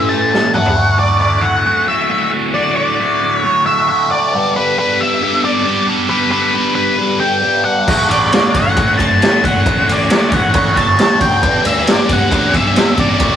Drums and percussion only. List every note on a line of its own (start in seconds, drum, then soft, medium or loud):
0.34 snare medium
0.54 mid tom loud
0.66 floor tom medium
7.88 kick loud
7.88 crash loud
8.11 ride medium
8.32 snare loud
8.32 ride loud
8.54 kick medium
8.54 ride medium
8.77 kick loud
8.77 ride loud
8.99 kick medium
8.99 ride medium
9.22 snare loud
9.22 ride loud
9.44 kick medium
9.44 ride medium
9.66 kick loud
9.66 ride loud
9.89 ride medium
10.10 snare loud
10.10 ride loud
10.32 kick medium
10.32 ride medium
10.54 kick loud
10.54 ride loud
10.76 kick medium
10.76 ride medium
10.99 snare loud
10.99 ride loud
11.21 kick medium
11.21 ride medium
11.43 kick loud
11.43 ride loud
11.65 ride loud
11.87 snare loud
11.87 ride loud
12.09 kick medium
12.09 ride medium
12.31 kick loud
12.31 ride loud
12.54 kick medium
12.54 ride medium
12.76 snare loud
12.76 ride loud
12.97 kick medium
12.97 ride medium
13.20 kick loud
13.20 ride loud